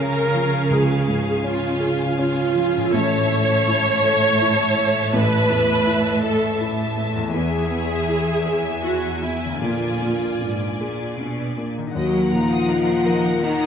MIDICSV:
0, 0, Header, 1, 8, 480
1, 0, Start_track
1, 0, Tempo, 742574
1, 457, Time_signature, 3, 2, 24, 8
1, 2379, Tempo, 732601
1, 5259, Tempo, 775194
1, 7659, Tempo, 738916
1, 8770, End_track
2, 0, Start_track
2, 0, Title_t, "Violin section"
2, 0, Program_c, 0, 48
2, 0, Note_on_c, 0, 77, 46
2, 0, Note_on_c, 0, 80, 45
2, 1877, Note_off_c, 0, 77, 0
2, 1877, Note_off_c, 0, 80, 0
2, 1902, Note_on_c, 0, 81, 52
2, 1903, Note_on_c, 0, 76, 50
2, 4746, Note_off_c, 0, 81, 0
2, 4747, Note_off_c, 0, 76, 0
2, 4769, Note_on_c, 0, 76, 54
2, 4773, Note_on_c, 0, 80, 50
2, 6190, Note_off_c, 0, 76, 0
2, 6214, Note_on_c, 0, 74, 38
2, 7508, Note_off_c, 0, 74, 0
2, 7535, Note_off_c, 0, 80, 0
2, 7664, Note_on_c, 0, 70, 45
2, 7668, Note_on_c, 0, 75, 42
2, 7775, Note_off_c, 0, 75, 0
2, 7784, Note_on_c, 0, 78, 40
2, 7901, Note_off_c, 0, 78, 0
2, 7907, Note_on_c, 0, 82, 45
2, 8022, Note_off_c, 0, 82, 0
2, 8029, Note_on_c, 0, 87, 41
2, 8143, Note_off_c, 0, 87, 0
2, 8143, Note_on_c, 0, 82, 38
2, 8259, Note_off_c, 0, 82, 0
2, 8263, Note_on_c, 0, 78, 38
2, 8379, Note_off_c, 0, 78, 0
2, 8382, Note_on_c, 0, 75, 44
2, 8499, Note_off_c, 0, 75, 0
2, 8510, Note_on_c, 0, 78, 39
2, 8623, Note_off_c, 0, 78, 0
2, 8628, Note_on_c, 0, 82, 42
2, 8743, Note_off_c, 0, 82, 0
2, 8746, Note_on_c, 0, 87, 42
2, 8770, Note_off_c, 0, 70, 0
2, 8770, Note_off_c, 0, 87, 0
2, 8770, End_track
3, 0, Start_track
3, 0, Title_t, "Violin section"
3, 0, Program_c, 1, 48
3, 7657, Note_on_c, 1, 78, 48
3, 8770, Note_off_c, 1, 78, 0
3, 8770, End_track
4, 0, Start_track
4, 0, Title_t, "Viola section"
4, 0, Program_c, 2, 48
4, 0, Note_on_c, 2, 70, 77
4, 459, Note_off_c, 2, 70, 0
4, 460, Note_on_c, 2, 68, 58
4, 931, Note_off_c, 2, 68, 0
4, 932, Note_on_c, 2, 65, 76
4, 1399, Note_off_c, 2, 65, 0
4, 1408, Note_on_c, 2, 65, 79
4, 1892, Note_off_c, 2, 65, 0
4, 1898, Note_on_c, 2, 73, 86
4, 3330, Note_off_c, 2, 73, 0
4, 3338, Note_on_c, 2, 71, 82
4, 4048, Note_on_c, 2, 69, 73
4, 4051, Note_off_c, 2, 71, 0
4, 4284, Note_off_c, 2, 69, 0
4, 4771, Note_on_c, 2, 68, 74
4, 5706, Note_off_c, 2, 68, 0
4, 5736, Note_on_c, 2, 66, 58
4, 5970, Note_on_c, 2, 64, 48
4, 5976, Note_off_c, 2, 66, 0
4, 6215, Note_off_c, 2, 64, 0
4, 6219, Note_on_c, 2, 65, 55
4, 7167, Note_off_c, 2, 65, 0
4, 7661, Note_on_c, 2, 58, 42
4, 7661, Note_on_c, 2, 63, 47
4, 8770, Note_off_c, 2, 58, 0
4, 8770, Note_off_c, 2, 63, 0
4, 8770, End_track
5, 0, Start_track
5, 0, Title_t, "French horn section"
5, 0, Program_c, 3, 60
5, 7659, Note_on_c, 3, 66, 63
5, 7882, Note_off_c, 3, 66, 0
5, 7900, Note_on_c, 3, 65, 57
5, 8618, Note_off_c, 3, 65, 0
5, 8621, Note_on_c, 3, 63, 65
5, 8770, Note_off_c, 3, 63, 0
5, 8770, End_track
6, 0, Start_track
6, 0, Title_t, "Harp"
6, 0, Program_c, 4, 46
6, 0, Note_on_c, 4, 49, 38
6, 0, Note_on_c, 4, 65, 30
6, 1400, Note_off_c, 4, 49, 0
6, 1459, Note_off_c, 4, 65, 0
6, 1786, Note_on_c, 4, 45, 44
6, 1816, Note_on_c, 4, 61, 38
6, 1844, Note_on_c, 4, 64, 36
6, 1873, Note_on_c, 4, 69, 36
6, 4333, Note_off_c, 4, 45, 0
6, 4364, Note_off_c, 4, 61, 0
6, 4392, Note_off_c, 4, 64, 0
6, 4422, Note_off_c, 4, 69, 0
6, 4656, Note_on_c, 4, 40, 47
6, 4688, Note_on_c, 4, 59, 32
6, 4718, Note_on_c, 4, 64, 32
6, 4746, Note_on_c, 4, 68, 37
6, 6108, Note_on_c, 4, 50, 35
6, 6136, Note_on_c, 4, 58, 28
6, 6164, Note_on_c, 4, 62, 26
6, 6181, Note_off_c, 4, 40, 0
6, 6185, Note_off_c, 4, 68, 0
6, 6193, Note_on_c, 4, 68, 29
6, 6196, Note_off_c, 4, 59, 0
6, 6210, Note_off_c, 4, 64, 0
6, 7551, Note_on_c, 4, 51, 38
6, 7607, Note_on_c, 4, 63, 30
6, 7622, Note_off_c, 4, 50, 0
6, 7634, Note_on_c, 4, 78, 30
6, 7650, Note_off_c, 4, 62, 0
6, 7664, Note_off_c, 4, 68, 0
6, 8594, Note_off_c, 4, 58, 0
6, 8770, Note_off_c, 4, 51, 0
6, 8770, Note_off_c, 4, 63, 0
6, 8770, Note_off_c, 4, 78, 0
6, 8770, End_track
7, 0, Start_track
7, 0, Title_t, "Grand piano"
7, 0, Program_c, 5, 0
7, 0, Control_c, 5, 64, 127
7, 0, Note_on_c, 5, 37, 45
7, 0, Note_on_c, 5, 53, 33
7, 0, Note_on_c, 5, 61, 40
7, 0, Note_on_c, 5, 68, 34
7, 125, Note_off_c, 5, 68, 0
7, 221, Note_off_c, 5, 53, 0
7, 221, Note_on_c, 5, 53, 36
7, 362, Note_off_c, 5, 61, 0
7, 429, Note_off_c, 5, 37, 0
7, 455, Note_on_c, 5, 37, 51
7, 470, Control_c, 5, 64, 0
7, 579, Control_c, 5, 64, 127
7, 600, Note_off_c, 5, 53, 0
7, 696, Note_on_c, 5, 44, 36
7, 930, Note_on_c, 5, 61, 40
7, 1073, Note_off_c, 5, 44, 0
7, 1162, Note_on_c, 5, 68, 39
7, 1310, Note_off_c, 5, 61, 0
7, 1410, Note_on_c, 5, 61, 44
7, 1552, Note_off_c, 5, 68, 0
7, 1651, Note_on_c, 5, 53, 38
7, 1805, Note_off_c, 5, 61, 0
7, 1875, Note_off_c, 5, 37, 0
7, 1897, Note_on_c, 5, 33, 49
7, 1900, Note_off_c, 5, 53, 0
7, 1914, Control_c, 5, 64, 0
7, 2003, Control_c, 5, 64, 127
7, 2138, Note_on_c, 5, 57, 35
7, 2376, Note_on_c, 5, 64, 43
7, 2521, Note_off_c, 5, 57, 0
7, 2615, Note_on_c, 5, 69, 45
7, 2762, Note_off_c, 5, 64, 0
7, 2860, Note_on_c, 5, 64, 41
7, 3000, Note_off_c, 5, 69, 0
7, 3095, Note_on_c, 5, 57, 36
7, 3238, Note_off_c, 5, 64, 0
7, 3303, Note_off_c, 5, 33, 0
7, 3332, Note_on_c, 5, 33, 57
7, 3344, Control_c, 5, 64, 0
7, 3456, Control_c, 5, 64, 127
7, 3473, Note_off_c, 5, 57, 0
7, 3569, Note_on_c, 5, 40, 37
7, 3811, Note_on_c, 5, 64, 44
7, 3952, Note_off_c, 5, 40, 0
7, 4052, Note_on_c, 5, 69, 41
7, 4194, Note_off_c, 5, 64, 0
7, 4293, Note_on_c, 5, 64, 40
7, 4436, Note_off_c, 5, 69, 0
7, 4533, Note_on_c, 5, 57, 39
7, 4678, Note_off_c, 5, 64, 0
7, 4746, Note_off_c, 5, 33, 0
7, 4774, Note_off_c, 5, 57, 0
7, 4777, Note_on_c, 5, 40, 47
7, 4785, Control_c, 5, 64, 0
7, 4892, Control_c, 5, 64, 127
7, 5015, Note_on_c, 5, 59, 34
7, 5260, Note_on_c, 5, 64, 33
7, 5398, Note_off_c, 5, 59, 0
7, 5493, Note_on_c, 5, 68, 35
7, 5637, Note_off_c, 5, 64, 0
7, 5730, Note_on_c, 5, 64, 34
7, 5877, Note_off_c, 5, 68, 0
7, 5970, Note_on_c, 5, 59, 27
7, 6118, Note_off_c, 5, 64, 0
7, 6194, Note_off_c, 5, 40, 0
7, 6210, Note_on_c, 5, 34, 38
7, 6215, Note_off_c, 5, 59, 0
7, 6227, Control_c, 5, 64, 0
7, 6335, Control_c, 5, 64, 127
7, 6460, Note_on_c, 5, 58, 24
7, 6704, Note_on_c, 5, 62, 25
7, 6848, Note_off_c, 5, 58, 0
7, 6949, Note_on_c, 5, 68, 27
7, 7090, Note_off_c, 5, 62, 0
7, 7188, Note_on_c, 5, 62, 29
7, 7331, Note_off_c, 5, 68, 0
7, 7422, Note_on_c, 5, 58, 25
7, 7567, Note_off_c, 5, 62, 0
7, 7630, Note_off_c, 5, 34, 0
7, 7656, Note_on_c, 5, 39, 47
7, 7657, Note_off_c, 5, 58, 0
7, 7670, Control_c, 5, 64, 0
7, 7772, Control_c, 5, 64, 127
7, 7898, Note_on_c, 5, 46, 33
7, 8132, Note_on_c, 5, 63, 35
7, 8281, Note_off_c, 5, 46, 0
7, 8375, Note_on_c, 5, 70, 35
7, 8518, Note_off_c, 5, 63, 0
7, 8615, Note_on_c, 5, 63, 36
7, 8761, Note_off_c, 5, 70, 0
7, 8770, Note_off_c, 5, 39, 0
7, 8770, Note_off_c, 5, 63, 0
7, 8770, End_track
8, 0, Start_track
8, 0, Title_t, "Cello section"
8, 0, Program_c, 6, 48
8, 0, Note_on_c, 6, 49, 47
8, 1900, Note_on_c, 6, 45, 64
8, 1902, Note_off_c, 6, 49, 0
8, 4745, Note_off_c, 6, 45, 0
8, 4773, Note_on_c, 6, 40, 57
8, 6192, Note_off_c, 6, 40, 0
8, 6218, Note_on_c, 6, 46, 46
8, 6646, Note_off_c, 6, 46, 0
8, 6703, Note_on_c, 6, 44, 41
8, 6928, Note_off_c, 6, 44, 0
8, 6947, Note_on_c, 6, 46, 38
8, 7185, Note_on_c, 6, 47, 42
8, 7186, Note_off_c, 6, 46, 0
8, 7424, Note_off_c, 6, 47, 0
8, 7427, Note_on_c, 6, 46, 36
8, 7660, Note_off_c, 6, 46, 0
8, 7660, Note_on_c, 6, 54, 57
8, 7882, Note_off_c, 6, 54, 0
8, 7900, Note_on_c, 6, 53, 57
8, 8618, Note_off_c, 6, 53, 0
8, 8620, Note_on_c, 6, 51, 58
8, 8770, Note_off_c, 6, 51, 0
8, 8770, End_track
0, 0, End_of_file